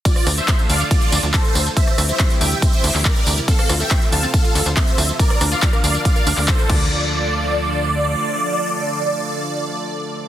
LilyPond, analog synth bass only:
\new Staff \with { instrumentName = "Analog synth bass" } { \clef bass \time 4/4 \key d \minor \tempo 4 = 140 r8 d,16 r8. d,16 r8. d,16 d,16 r8 d,16 r16 | r8 d,16 r8. d,16 r8. d,16 d,16 r8 d,16 r16 | r8 d,16 r8. d,16 r8. d,16 d,16 r8 d,16 r16 | r8 d,16 r8. d,16 r8. d,16 d,16 r8 d,8~ |
d,2. r4 | r1 | }